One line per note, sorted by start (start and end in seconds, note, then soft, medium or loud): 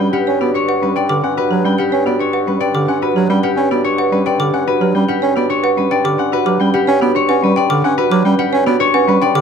0.00 9.41 G2 medium
0.00 0.10 G3 medium
0.00 0.17 C#4 medium
0.00 0.12 G4 medium
0.00 0.81 B4 medium
0.00 0.54 C#5 loud
0.00 0.40 D5 loud
0.00 1.23 F#5 medium
0.00 1.64 G5 medium
0.13 1.78 G4 medium
0.13 0.31 G4 medium
0.13 0.31 F#5 medium
0.27 0.38 C#4 medium
0.27 0.45 C#5 loud
0.41 0.51 B3 medium
0.41 0.59 F#4 medium
0.41 0.95 D5 medium
0.54 0.72 D4 medium
0.54 2.19 C#5 medium
0.68 0.86 B4 medium
0.68 0.86 F#5 medium
0.82 0.93 G3 medium
0.82 1.00 C#4 medium
0.82 1.36 B4 medium
0.96 1.14 D4 medium
0.96 2.05 D5 medium
0.96 1.14 G5 medium
1.09 1.20 D3 medium
1.09 1.27 G4 loud
1.09 1.27 D6 loud
1.23 1.34 C#4 medium
1.23 1.41 D4 medium
1.23 2.87 F#5 medium
1.37 1.55 F#4 medium
1.37 2.46 B4 medium
1.51 1.61 F#3 medium
1.51 1.69 G4 medium
1.65 1.75 G3 medium
1.65 1.82 C#4 medium
1.65 3.28 G5 medium
1.78 1.96 G4 medium
1.78 3.42 G4 medium
1.78 1.96 F#5 medium
1.92 2.03 C#4 medium
1.92 2.10 C#5 medium
2.06 2.16 B3 medium
2.06 2.24 F#4 medium
2.06 2.59 D5 medium
2.19 2.38 D4 medium
2.19 3.83 C#5 medium
2.33 2.51 B4 medium
2.33 2.51 F#5 medium
2.47 2.58 G3 medium
2.47 2.65 C#4 medium
2.47 3.01 B4 medium
2.60 2.79 D4 medium
2.60 3.70 D5 medium
2.60 2.79 G5 medium
2.75 2.85 D3 medium
2.75 2.93 G4 medium
2.75 2.93 D6 medium
2.88 2.99 C#4 medium
2.88 3.06 D4 medium
2.88 4.52 F#5 medium
3.02 3.20 F#4 medium
3.02 4.11 B4 loud
3.16 3.26 F#3 medium
3.16 3.34 G4 medium
3.29 3.40 G3 medium
3.29 3.48 C#4 medium
3.29 4.94 G5 medium
3.43 5.08 G4 medium
3.43 3.61 G4 medium
3.43 3.61 F#5 medium
3.57 3.67 C#4 medium
3.57 3.75 C#5 medium
3.71 3.81 B3 medium
3.71 3.89 F#4 medium
3.71 4.25 D5 medium
3.84 4.03 D4 medium
3.84 5.49 C#5 medium
3.98 4.16 B4 medium
3.98 4.16 F#5 medium
4.12 4.22 G3 medium
4.12 4.30 C#4 medium
4.12 4.66 B4 medium
4.26 4.44 D4 medium
4.26 5.35 D5 medium
4.26 4.44 G5 medium
4.39 4.50 D3 medium
4.39 4.58 G4 loud
4.39 4.58 D6 loud
4.53 4.64 C#4 medium
4.53 4.72 D4 medium
4.53 6.18 F#5 medium
4.68 4.85 F#4 medium
4.68 5.76 B4 loud
4.81 4.91 F#3 medium
4.81 4.99 G4 medium
4.95 5.05 G3 medium
4.95 5.13 C#4 medium
4.95 6.59 G5 medium
5.09 5.27 G4 medium
5.09 6.73 G4 loud
5.09 5.26 F#5 medium
5.22 5.33 C#4 medium
5.22 5.40 C#5 loud
5.36 5.47 B3 medium
5.36 5.54 F#4 medium
5.36 5.90 D5 medium
5.50 5.68 D4 medium
5.50 7.14 C#5 medium
5.63 5.82 B4 medium
5.63 5.82 F#5 loud
5.77 5.88 G3 medium
5.77 5.95 C#4 medium
5.77 6.32 B4 medium
5.91 6.09 D4 medium
5.91 7.00 D5 loud
5.91 6.09 G5 medium
6.05 6.15 D3 medium
6.05 6.23 G4 loud
6.05 6.23 D6 loud
6.18 6.29 C#4 medium
6.18 6.37 D4 medium
6.18 7.83 F#5 medium
6.32 6.50 F#4 medium
6.32 7.42 B4 loud
6.46 6.57 F#3 medium
6.46 6.64 G4 loud
6.46 6.64 D6 medium
6.60 6.70 G3 medium
6.60 6.78 C#4 medium
6.60 8.24 G5 medium
6.74 6.92 G4 medium
6.74 8.38 G4 loud
6.74 6.92 F#5 medium
6.87 6.98 C#4 loud
6.87 7.05 C#5 loud
7.01 7.12 B3 medium
7.01 7.19 F#4 medium
7.01 7.56 D5 medium
7.15 7.33 D4 medium
7.15 8.79 C#5 loud
7.29 7.39 C#4 medium
7.29 7.47 B4 medium
7.29 7.47 F#5 loud
7.43 7.53 G3 medium
7.43 7.60 C#4 medium
7.43 7.97 B4 medium
7.56 7.74 D4 medium
7.56 8.65 D5 loud
7.56 7.74 G5 medium
7.70 7.81 D3 medium
7.70 7.88 G4 loud
7.70 7.88 D6 loud
7.84 7.94 C#4 medium
7.84 8.02 D4 medium
7.84 9.41 F#5 medium
7.98 8.16 F#4 medium
7.98 9.07 B4 loud
8.11 8.22 F#3 medium
8.11 8.29 G4 loud
8.11 8.29 D6 loud
8.25 8.35 G3 medium
8.25 8.43 C#4 medium
8.25 9.41 G5 medium
8.39 9.41 G4 loud
8.39 8.57 G4 medium
8.39 8.57 F#5 medium
8.53 8.63 C#4 loud
8.53 8.71 C#5 loud
8.66 8.77 B3 medium
8.66 8.84 F#4 loud
8.66 9.21 D5 medium
8.80 8.98 D4 medium
8.80 9.41 C#5 loud
8.94 9.04 C#4 medium
8.94 9.12 B4 loud
8.94 9.12 F#5 loud
9.08 9.18 G3 medium
9.08 9.26 C#4 medium
9.08 9.41 B4 medium
9.22 9.39 D4 medium
9.22 9.41 D5 loud
9.22 9.39 G5 medium
9.35 9.41 D3 medium
9.35 9.41 G4 loud
9.35 9.41 D6 loud